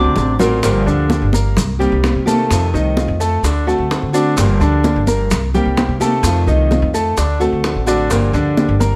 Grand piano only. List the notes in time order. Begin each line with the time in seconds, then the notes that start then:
Already playing: C3 C4 D4
0.40 A#2 A#3 A#4
0.63 A#2 A#3 A#4
0.86 D3 D4 D5
1.34 A#3 A#4 A#5
1.80 G3 G4 G5
2.27 A3 A4 A5
2.74 D#3 D#4 D#5
3.20 A3 A4 A5
3.44 D3 D4 D5
3.67 A3 A4 A5
4.14 D3 D4 D5
4.37 A#2 A#3 A#4
4.60 D3 D4 D5
5.08 A#3 A#4 A#5
5.54 G3 G4 G5
6.01 A3 A4 A5
6.47 D#3 D#4 D#5
6.94 A3 A4 A5
7.18 D3 D4 D5
7.40 A3 A4 A5
7.87 D3 D4 D5
8.10 A#2 A#3 A#4
8.34 D3 D4 D5
8.80 A#3 A#4 A#5